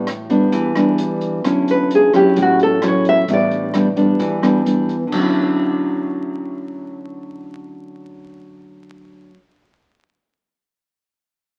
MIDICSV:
0, 0, Header, 1, 5, 480
1, 0, Start_track
1, 0, Key_signature, 2, "major"
1, 0, Tempo, 459418
1, 1506, Time_signature, 4, 2, 24, 8
1, 12102, End_track
2, 0, Start_track
2, 0, Title_t, "Nylon-string guitar"
2, 0, Program_c, 0, 24
2, 1784, Note_on_c, 0, 71, 73
2, 1998, Note_off_c, 0, 71, 0
2, 2038, Note_on_c, 0, 68, 70
2, 2245, Note_off_c, 0, 68, 0
2, 2257, Note_on_c, 0, 67, 77
2, 2474, Note_off_c, 0, 67, 0
2, 2530, Note_on_c, 0, 66, 74
2, 2731, Note_off_c, 0, 66, 0
2, 2746, Note_on_c, 0, 69, 82
2, 2959, Note_off_c, 0, 69, 0
2, 3008, Note_on_c, 0, 73, 58
2, 3210, Note_off_c, 0, 73, 0
2, 3227, Note_on_c, 0, 76, 95
2, 3439, Note_off_c, 0, 76, 0
2, 3483, Note_on_c, 0, 74, 68
2, 4372, Note_off_c, 0, 74, 0
2, 12102, End_track
3, 0, Start_track
3, 0, Title_t, "Nylon-string guitar"
3, 0, Program_c, 1, 24
3, 0, Note_on_c, 1, 45, 53
3, 308, Note_on_c, 1, 55, 52
3, 312, Note_on_c, 1, 59, 53
3, 318, Note_on_c, 1, 62, 67
3, 522, Note_off_c, 1, 45, 0
3, 545, Note_on_c, 1, 52, 59
3, 749, Note_off_c, 1, 55, 0
3, 751, Note_off_c, 1, 59, 0
3, 753, Note_off_c, 1, 62, 0
3, 792, Note_on_c, 1, 55, 62
3, 795, Note_on_c, 1, 59, 65
3, 799, Note_on_c, 1, 62, 62
3, 1471, Note_off_c, 1, 55, 0
3, 1471, Note_off_c, 1, 59, 0
3, 1472, Note_off_c, 1, 62, 0
3, 1481, Note_off_c, 1, 52, 0
3, 1509, Note_on_c, 1, 50, 53
3, 1512, Note_on_c, 1, 54, 51
3, 1515, Note_on_c, 1, 61, 51
3, 1518, Note_on_c, 1, 64, 58
3, 2189, Note_off_c, 1, 54, 0
3, 2191, Note_off_c, 1, 61, 0
3, 2192, Note_off_c, 1, 64, 0
3, 2227, Note_on_c, 1, 54, 60
3, 2233, Note_on_c, 1, 61, 57
3, 2238, Note_on_c, 1, 64, 59
3, 2443, Note_off_c, 1, 50, 0
3, 2472, Note_on_c, 1, 45, 56
3, 2907, Note_off_c, 1, 54, 0
3, 2910, Note_off_c, 1, 61, 0
3, 2913, Note_off_c, 1, 64, 0
3, 2953, Note_on_c, 1, 54, 50
3, 2960, Note_on_c, 1, 61, 47
3, 2963, Note_on_c, 1, 64, 60
3, 3404, Note_off_c, 1, 45, 0
3, 3410, Note_off_c, 1, 54, 0
3, 3411, Note_off_c, 1, 61, 0
3, 3415, Note_off_c, 1, 64, 0
3, 3430, Note_on_c, 1, 45, 45
3, 3432, Note_on_c, 1, 55, 51
3, 3434, Note_on_c, 1, 59, 44
3, 3440, Note_on_c, 1, 62, 51
3, 3869, Note_off_c, 1, 55, 0
3, 3871, Note_off_c, 1, 59, 0
3, 3873, Note_off_c, 1, 62, 0
3, 3904, Note_on_c, 1, 55, 50
3, 3906, Note_on_c, 1, 59, 45
3, 3914, Note_on_c, 1, 62, 55
3, 4045, Note_off_c, 1, 55, 0
3, 4047, Note_off_c, 1, 59, 0
3, 4049, Note_off_c, 1, 62, 0
3, 4141, Note_on_c, 1, 55, 54
3, 4145, Note_on_c, 1, 59, 63
3, 4148, Note_on_c, 1, 62, 67
3, 4363, Note_off_c, 1, 45, 0
3, 4380, Note_on_c, 1, 52, 55
3, 4584, Note_off_c, 1, 55, 0
3, 4586, Note_off_c, 1, 59, 0
3, 4586, Note_off_c, 1, 62, 0
3, 4619, Note_on_c, 1, 55, 57
3, 4623, Note_on_c, 1, 59, 58
3, 4625, Note_on_c, 1, 62, 59
3, 4823, Note_off_c, 1, 55, 0
3, 4824, Note_off_c, 1, 59, 0
3, 4826, Note_off_c, 1, 62, 0
3, 4858, Note_on_c, 1, 55, 45
3, 4862, Note_on_c, 1, 59, 47
3, 4866, Note_on_c, 1, 62, 49
3, 5170, Note_off_c, 1, 55, 0
3, 5172, Note_off_c, 1, 59, 0
3, 5174, Note_off_c, 1, 62, 0
3, 5293, Note_off_c, 1, 52, 0
3, 5297, Note_on_c, 1, 50, 54
3, 5361, Note_on_c, 1, 54, 57
3, 5409, Note_on_c, 1, 61, 57
3, 5455, Note_on_c, 1, 64, 68
3, 9711, Note_off_c, 1, 50, 0
3, 9775, Note_off_c, 1, 54, 0
3, 9823, Note_off_c, 1, 61, 0
3, 9868, Note_off_c, 1, 64, 0
3, 12102, End_track
4, 0, Start_track
4, 0, Title_t, "Upright bass"
4, 0, Program_c, 2, 32
4, 0, Note_on_c, 2, 33, 84
4, 505, Note_off_c, 2, 33, 0
4, 551, Note_on_c, 2, 40, 89
4, 1466, Note_off_c, 2, 40, 0
4, 1508, Note_on_c, 2, 38, 86
4, 2424, Note_off_c, 2, 38, 0
4, 2470, Note_on_c, 2, 33, 91
4, 3385, Note_off_c, 2, 33, 0
4, 3430, Note_on_c, 2, 33, 91
4, 4345, Note_off_c, 2, 33, 0
4, 4385, Note_on_c, 2, 40, 92
4, 5303, Note_off_c, 2, 40, 0
4, 5352, Note_on_c, 2, 38, 75
4, 9723, Note_off_c, 2, 38, 0
4, 12102, End_track
5, 0, Start_track
5, 0, Title_t, "Drums"
5, 73, Note_on_c, 9, 37, 56
5, 73, Note_on_c, 9, 42, 44
5, 177, Note_off_c, 9, 37, 0
5, 177, Note_off_c, 9, 42, 0
5, 312, Note_on_c, 9, 42, 24
5, 417, Note_off_c, 9, 42, 0
5, 548, Note_on_c, 9, 42, 42
5, 549, Note_on_c, 9, 36, 61
5, 652, Note_off_c, 9, 42, 0
5, 653, Note_off_c, 9, 36, 0
5, 788, Note_on_c, 9, 37, 57
5, 788, Note_on_c, 9, 42, 25
5, 893, Note_off_c, 9, 37, 0
5, 893, Note_off_c, 9, 42, 0
5, 1027, Note_on_c, 9, 42, 47
5, 1131, Note_off_c, 9, 42, 0
5, 1266, Note_on_c, 9, 42, 25
5, 1371, Note_off_c, 9, 42, 0
5, 1509, Note_on_c, 9, 36, 59
5, 1510, Note_on_c, 9, 37, 52
5, 1510, Note_on_c, 9, 42, 43
5, 1613, Note_off_c, 9, 36, 0
5, 1614, Note_off_c, 9, 37, 0
5, 1614, Note_off_c, 9, 42, 0
5, 1752, Note_on_c, 9, 42, 27
5, 1857, Note_off_c, 9, 42, 0
5, 1991, Note_on_c, 9, 42, 39
5, 2096, Note_off_c, 9, 42, 0
5, 2230, Note_on_c, 9, 37, 45
5, 2230, Note_on_c, 9, 42, 20
5, 2334, Note_off_c, 9, 37, 0
5, 2334, Note_off_c, 9, 42, 0
5, 2469, Note_on_c, 9, 36, 58
5, 2469, Note_on_c, 9, 42, 40
5, 2573, Note_off_c, 9, 36, 0
5, 2574, Note_off_c, 9, 42, 0
5, 2710, Note_on_c, 9, 42, 26
5, 2815, Note_off_c, 9, 42, 0
5, 2945, Note_on_c, 9, 37, 58
5, 2945, Note_on_c, 9, 42, 34
5, 3050, Note_off_c, 9, 37, 0
5, 3050, Note_off_c, 9, 42, 0
5, 3186, Note_on_c, 9, 42, 23
5, 3291, Note_off_c, 9, 42, 0
5, 3428, Note_on_c, 9, 36, 53
5, 3429, Note_on_c, 9, 42, 41
5, 3533, Note_off_c, 9, 36, 0
5, 3534, Note_off_c, 9, 42, 0
5, 3668, Note_on_c, 9, 42, 22
5, 3773, Note_off_c, 9, 42, 0
5, 3904, Note_on_c, 9, 37, 56
5, 3904, Note_on_c, 9, 42, 40
5, 4009, Note_off_c, 9, 37, 0
5, 4009, Note_off_c, 9, 42, 0
5, 4144, Note_on_c, 9, 42, 22
5, 4147, Note_on_c, 9, 36, 50
5, 4248, Note_off_c, 9, 42, 0
5, 4251, Note_off_c, 9, 36, 0
5, 4385, Note_on_c, 9, 42, 43
5, 4387, Note_on_c, 9, 36, 57
5, 4489, Note_off_c, 9, 42, 0
5, 4491, Note_off_c, 9, 36, 0
5, 4630, Note_on_c, 9, 37, 52
5, 4630, Note_on_c, 9, 42, 25
5, 4734, Note_off_c, 9, 37, 0
5, 4734, Note_off_c, 9, 42, 0
5, 4872, Note_on_c, 9, 42, 43
5, 4977, Note_off_c, 9, 42, 0
5, 5108, Note_on_c, 9, 36, 42
5, 5110, Note_on_c, 9, 42, 23
5, 5213, Note_off_c, 9, 36, 0
5, 5215, Note_off_c, 9, 42, 0
5, 5349, Note_on_c, 9, 36, 62
5, 5351, Note_on_c, 9, 49, 58
5, 5454, Note_off_c, 9, 36, 0
5, 5456, Note_off_c, 9, 49, 0
5, 12102, End_track
0, 0, End_of_file